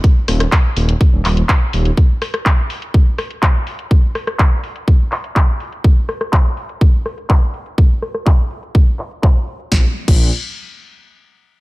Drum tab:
CC |----------------|----------------|----------------|----------------|
HH |x-oxx-oxx-oxx-ox|x-oxx-oxx-oxx-ox|x-oxx-oxx-ox--ox|--ox--ox--ox--ox|
CP |----x-----x-x---|----x-------x---|----x-----x-x---|----x-------x---|
SD |--rr------------|--rr------r-----|--rr------------|--rr------r-----|
BD |o---o---o---o---|o---o---o---o---|o---o---o---o---|o---o---o---o---|

CC |----------------|---x------------|
HH |--ox--ox--ox--ox|----------------|
CP |----x-----x-x---|----------------|
SD |--rr------------|o---------------|
BD |o---o---o---o---|o--o------------|